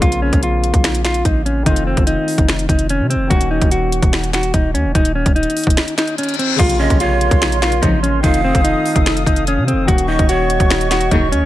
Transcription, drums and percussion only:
0.02 kick loud
0.02 closed hi-hat medium
0.12 closed hi-hat medium
0.33 kick loud
0.33 closed hi-hat medium
0.43 closed hi-hat medium
0.64 closed hi-hat medium
0.74 kick loud
0.74 closed hi-hat medium
0.84 finger snap loud
0.84 snare loud
0.84 closed hi-hat medium
0.95 closed hi-hat medium
1.05 finger snap medium
1.05 snare medium
1.05 closed hi-hat medium
1.14 closed hi-hat medium
1.25 kick medium
1.25 closed hi-hat medium
1.46 closed hi-hat medium
1.66 kick loud
1.66 closed hi-hat medium
1.76 closed hi-hat medium
1.97 kick loud
1.97 closed hi-hat medium
2.07 closed hi-hat medium
2.28 open hi-hat medium
2.38 kick loud
2.38 closed hi-hat medium
2.49 finger snap medium
2.49 snare loud
2.49 closed hi-hat medium
2.59 closed hi-hat medium
2.69 kick loud
2.69 closed hi-hat medium
2.79 closed hi-hat medium
2.89 closed hi-hat medium
3.11 closed hi-hat medium
3.31 kick loud
3.31 closed hi-hat medium
3.41 closed hi-hat medium
3.62 kick loud
3.62 closed hi-hat medium
3.71 closed hi-hat medium
3.92 closed hi-hat medium
4.03 kick loud
4.03 closed hi-hat medium
4.13 finger snap medium
4.13 snare loud
4.13 closed hi-hat medium
4.24 closed hi-hat medium
4.33 finger snap medium
4.33 snare medium
4.33 closed hi-hat medium
4.43 closed hi-hat medium
4.54 kick medium
4.54 closed hi-hat medium
4.75 closed hi-hat medium
4.95 kick loud
4.95 closed hi-hat medium
5.05 closed hi-hat medium
5.26 kick loud
5.26 closed hi-hat soft
5.36 closed hi-hat soft
5.43 closed hi-hat medium
5.50 closed hi-hat medium
5.57 closed hi-hat medium
5.57 open hi-hat medium
5.64 kick loud
5.64 closed hi-hat medium
5.70 closed hi-hat medium
5.77 finger snap medium
5.77 snare loud
5.77 closed hi-hat medium
5.88 closed hi-hat medium
5.98 finger snap medium
5.98 snare loud
5.98 closed hi-hat medium
6.07 closed hi-hat medium
6.18 closed hi-hat medium
6.23 closed hi-hat medium
6.29 closed hi-hat medium
6.34 closed hi-hat soft
6.39 closed hi-hat medium
6.59 kick loud
6.59 closed hi-hat medium
6.59 crash loud
6.70 closed hi-hat medium
6.90 kick loud
6.90 closed hi-hat medium
7.00 closed hi-hat medium
7.21 closed hi-hat medium
7.31 kick loud
7.31 closed hi-hat medium
7.42 finger snap loud
7.42 snare loud
7.42 closed hi-hat medium
7.52 closed hi-hat medium
7.62 finger snap medium
7.62 snare medium
7.62 closed hi-hat medium
7.72 closed hi-hat medium
7.83 kick medium
7.83 closed hi-hat medium
8.04 closed hi-hat medium
8.24 kick loud
8.24 closed hi-hat medium
8.34 closed hi-hat medium
8.55 kick loud
8.55 closed hi-hat medium
8.65 closed hi-hat medium
8.86 open hi-hat loud
8.96 kick loud
8.96 closed hi-hat medium
9.06 finger snap medium
9.06 snare loud
9.06 closed hi-hat medium
9.17 closed hi-hat medium
9.26 kick loud
9.26 closed hi-hat medium
9.36 closed hi-hat medium
9.47 closed hi-hat medium
9.68 closed hi-hat medium
9.88 kick loud
9.88 closed hi-hat medium
9.98 closed hi-hat medium
10.19 kick loud
10.19 closed hi-hat medium
10.29 closed hi-hat medium
10.50 closed hi-hat medium
10.60 kick loud
10.60 closed hi-hat medium
10.70 finger snap loud
10.70 snare loud
10.70 closed hi-hat medium
10.81 closed hi-hat medium
10.91 finger snap medium
10.91 snare loud
10.91 closed hi-hat medium
11.01 closed hi-hat medium
11.11 kick medium
11.11 closed hi-hat medium
11.32 closed hi-hat medium

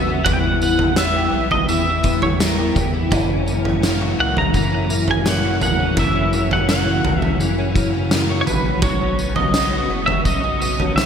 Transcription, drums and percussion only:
0.26 kick loud
0.26 floor tom loud
0.26 tambourine medium
0.62 tambourine medium
0.79 floor tom medium
0.96 snare loud
0.96 tambourine loud
1.51 floor tom medium
1.68 tambourine medium
2.03 kick medium
2.03 tambourine medium
2.22 floor tom medium
2.40 snare loud
2.40 tambourine medium
2.76 kick medium
2.76 floor tom medium
2.76 tambourine medium
3.12 kick loud
3.12 floor tom loud
3.12 tambourine medium
3.47 tambourine medium
3.65 floor tom medium
3.83 snare loud
3.83 tambourine loud
4.37 floor tom medium
4.54 kick medium
4.54 tambourine medium
4.90 tambourine medium
5.08 floor tom medium
5.26 snare loud
5.26 tambourine medium
5.61 floor tom medium
5.61 tambourine medium
5.97 kick loud
5.97 floor tom loud
5.97 tambourine medium
6.33 tambourine medium
6.51 floor tom medium
6.69 snare loud
6.69 tambourine loud
7.05 floor tom medium
7.22 floor tom medium
7.40 tambourine medium
7.76 kick medium
7.76 tambourine medium
8.11 snare loud
8.11 tambourine medium
8.47 floor tom medium
8.47 tambourine medium
8.82 kick loud
8.82 floor tom loud
8.82 tambourine medium
9.19 tambourine medium
9.36 floor tom medium
9.54 snare loud
9.54 tambourine medium
10.08 floor tom medium
10.25 kick medium
10.25 tambourine medium
10.62 tambourine medium
10.80 floor tom medium
10.98 snare loud
10.98 tambourine medium

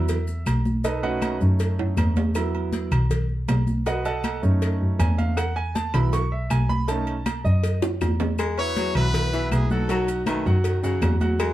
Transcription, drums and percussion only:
0.08 cowbell loud
0.08 high conga soft
0.08 low agogo medium
0.08 maracas medium
0.27 high conga soft
0.27 maracas medium
0.46 cowbell medium
0.46 high conga medium
0.46 low agogo loud
0.46 claves medium
0.46 maracas medium
0.65 high conga medium
0.65 maracas soft
0.84 cowbell loud
0.84 high conga soft
0.84 low agogo medium
0.84 maracas medium
1.03 high conga soft
1.03 low agogo medium
1.22 cowbell medium
1.22 high conga medium
1.22 low agogo loud
1.22 claves medium
1.22 maracas medium
1.41 high conga soft
1.41 maracas soft
1.59 cowbell loud
1.59 high conga soft
1.59 low agogo medium
1.59 maracas medium
1.78 high conga soft
1.78 high timbale medium
1.97 cowbell medium
1.97 high conga medium
1.97 low agogo loud
1.97 claves medium
1.97 maracas medium
2.16 high conga medium
2.16 low timbale loud
2.16 low agogo medium
2.16 maracas soft
2.35 cowbell loud
2.35 high conga soft
2.35 low agogo loud
2.35 claves medium
2.35 maracas medium
2.54 high conga soft
2.54 low agogo medium
2.73 cowbell medium
2.73 high conga medium
2.73 maracas medium
2.91 cowbell medium
2.91 high conga soft
2.91 low conga medium
2.91 low agogo loud
2.91 claves medium
2.91 maracas soft
3.10 cowbell loud
3.10 high conga soft
3.10 low conga medium
3.10 low agogo medium
3.10 maracas medium
3.29 high conga soft
3.48 cowbell medium
3.48 high conga medium
3.48 low timbale medium
3.48 low agogo loud
3.48 claves medium
3.48 maracas medium
3.67 high conga medium
3.67 maracas soft
3.86 cowbell loud
3.86 low agogo medium
3.86 maracas medium
4.05 high conga soft
4.05 low agogo medium
4.05 maracas medium
4.24 cowbell medium
4.24 high conga medium
4.24 low agogo loud
4.24 claves medium
4.24 maracas medium
4.43 high conga soft
4.43 maracas soft
4.62 cowbell loud
4.62 high conga soft
4.62 low agogo medium
4.62 maracas medium
4.81 high conga soft
5.00 cowbell medium
5.00 high conga medium
5.00 low agogo loud
5.00 claves medium
5.00 maracas medium
5.19 high conga medium
5.19 low agogo medium
5.19 maracas soft
5.37 cowbell loud
5.37 low agogo loud
5.37 claves medium
5.37 maracas medium
5.56 high conga soft
5.56 low agogo medium
5.75 cowbell medium
5.75 high conga medium
5.75 maracas medium
5.94 cowbell medium
5.94 high conga soft
5.94 low conga medium
5.94 low agogo loud
5.94 claves medium
5.94 maracas soft
6.13 cowbell loud
6.13 high conga soft
6.13 low agogo medium
6.13 maracas medium
6.32 high conga soft
6.50 cowbell medium
6.50 high conga medium
6.50 low agogo loud
6.50 claves medium
6.50 maracas medium
6.70 high conga medium
6.70 maracas soft
6.88 cowbell loud
6.88 low agogo medium
6.88 maracas medium
7.07 high conga soft
7.07 low agogo medium
7.26 cowbell medium
7.26 high conga loud
7.26 low agogo loud
7.26 claves medium
7.26 maracas medium
7.45 high conga soft
7.45 maracas soft
7.63 cowbell loud
7.63 high conga soft
7.63 low agogo medium
7.63 maracas medium
7.82 high bongo medium
7.82 high conga soft
7.82 high timbale loud
7.82 maracas medium
8.01 cowbell medium
8.01 high bongo loud
8.01 high conga medium
8.01 low agogo loud
8.01 claves medium
8.01 maracas medium
8.20 low bongo medium
8.20 high conga medium
8.20 low timbale loud
8.20 low agogo medium
8.20 maracas soft
8.38 cowbell loud
8.38 high conga soft
8.38 low agogo loud
8.38 claves medium
8.38 maracas medium
8.58 high conga soft
8.58 low agogo medium
8.77 cowbell medium
8.77 high conga medium
8.77 maracas medium
8.95 cowbell medium
8.95 high conga soft
8.95 low conga medium
8.95 low agogo loud
8.95 claves medium
8.95 maracas soft
9.14 cowbell loud
9.14 high conga soft
9.14 low conga medium
9.14 low agogo medium
9.14 maracas medium
9.33 maracas medium
9.51 cowbell medium
9.51 high conga medium
9.51 low agogo loud
9.51 claves medium
9.51 maracas medium
9.70 high conga medium
9.70 maracas soft
9.89 cowbell loud
9.89 low agogo medium
9.89 maracas medium
10.08 high conga soft
10.08 low agogo medium
10.08 maracas medium
10.26 cowbell medium
10.26 high conga loud
10.26 low agogo loud
10.26 claves medium
10.26 maracas medium
10.46 high conga soft
10.46 maracas soft
10.64 cowbell loud
10.64 high conga soft
10.64 low agogo medium
10.64 maracas medium
10.83 high conga soft
10.83 maracas medium
11.02 cowbell medium
11.02 high conga medium
11.02 low timbale medium
11.02 low agogo loud
11.02 claves medium
11.02 maracas medium
11.21 high conga medium
11.21 low agogo medium
11.21 maracas soft
11.40 cowbell loud
11.40 high conga soft
11.40 low agogo loud
11.40 claves medium
11.40 maracas medium

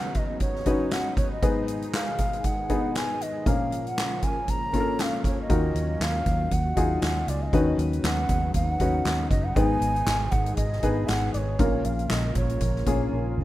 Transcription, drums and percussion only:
0.15 kick medium
0.15 closed hi-hat medium
0.40 kick medium
0.40 closed hi-hat medium
0.55 snare soft
0.66 kick medium
0.66 closed hi-hat medium
0.91 snare medium
0.91 clap medium
0.91 closed hi-hat medium
1.17 kick medium
1.17 closed hi-hat medium
1.43 kick loud
1.43 closed hi-hat medium
1.68 closed hi-hat medium
1.82 closed hi-hat soft
1.93 snare loud
1.93 clap medium
1.93 closed hi-hat medium
2.18 kick medium
2.18 closed hi-hat medium
2.33 closed hi-hat soft
2.44 kick medium
2.44 closed hi-hat medium
2.69 kick medium
2.69 closed hi-hat medium
2.95 snare medium
2.95 clap medium
2.95 closed hi-hat medium
3.21 closed hi-hat medium
3.46 kick loud
3.46 closed hi-hat medium
3.72 closed hi-hat medium
3.87 closed hi-hat soft
3.98 snare medium
3.98 clap medium
3.98 closed hi-hat medium
4.22 kick medium
4.22 closed hi-hat medium
4.48 kick medium
4.48 closed hi-hat medium
4.74 kick medium
4.74 closed hi-hat medium
4.99 snare medium
4.99 clap medium
4.99 closed hi-hat medium
5.24 kick medium
5.24 closed hi-hat medium
5.50 kick loud
5.50 closed hi-hat medium
5.75 closed hi-hat medium
6.01 snare loud
6.01 clap medium
6.01 closed hi-hat medium
6.26 kick medium
6.26 closed hi-hat medium
6.51 kick medium
6.51 closed hi-hat medium
6.77 kick medium
6.77 closed hi-hat medium
7.02 snare loud
7.02 clap medium
7.02 closed hi-hat medium
7.28 closed hi-hat medium
7.53 kick medium
7.53 closed hi-hat medium
7.79 closed hi-hat medium
7.93 closed hi-hat soft
8.04 snare loud
8.04 clap medium
8.04 closed hi-hat medium
8.29 kick medium
8.29 closed hi-hat medium
8.54 kick medium
8.54 closed hi-hat medium
8.80 kick medium
8.80 closed hi-hat medium
9.05 snare medium
9.05 clap medium
9.05 closed hi-hat medium
9.31 kick medium
9.31 closed hi-hat medium
9.56 kick loud
9.56 closed hi-hat medium
9.82 closed hi-hat medium
9.96 closed hi-hat soft
10.07 snare loud
10.07 clap medium
10.07 closed hi-hat medium
10.31 kick medium
10.31 closed hi-hat medium
10.46 closed hi-hat soft
10.57 kick medium
10.57 closed hi-hat medium
10.72 snare soft
10.83 kick medium
10.83 closed hi-hat medium
11.08 snare medium
11.08 clap medium
11.08 closed hi-hat medium
11.34 closed hi-hat medium
11.59 kick loud
11.59 closed hi-hat medium
11.85 closed hi-hat medium
11.99 closed hi-hat soft
12.10 snare loud
12.10 clap medium
12.10 closed hi-hat medium
12.35 kick medium
12.35 closed hi-hat medium
12.49 closed hi-hat soft
12.61 kick medium
12.61 closed hi-hat medium
12.76 snare soft
12.86 kick medium
12.86 closed hi-hat medium
13.12 high tom soft
13.38 mid tom medium

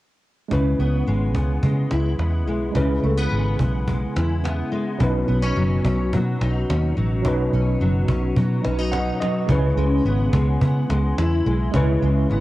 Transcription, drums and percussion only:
0.51 cajon bass medium
0.80 cajon slap soft
1.07 cajon slap soft
1.35 cajon bass loud
1.63 cajon bass medium
1.91 cajon slap medium
2.19 cajon slap medium
2.48 cajon slap soft
2.75 cajon bass medium
3.04 cajon slap soft
3.31 cajon slap soft
3.59 cajon bass loud
3.88 cajon bass medium
4.16 cajon slap medium
4.45 cajon slap medium
4.73 cajon slap soft
5.00 cajon bass medium
5.29 cajon slap soft
5.56 cajon slap soft
5.85 cajon bass loud
6.13 cajon bass medium
6.41 cajon slap medium
6.70 cajon slap medium
6.98 cajon slap soft
7.25 cajon bass medium
7.53 cajon slap soft
7.80 cajon slap soft
8.08 cajon bass loud
8.36 cajon bass medium
8.65 cajon slap medium
8.93 cajon slap medium
9.22 cajon slap medium
9.49 cajon bass medium
9.78 cajon slap soft
10.05 cajon slap soft
10.33 cajon bass loud
10.61 cajon bass medium
10.90 cajon slap medium
11.18 cajon slap medium
11.47 cajon slap soft
11.74 cajon bass medium
12.03 cajon slap soft
12.30 cajon slap soft

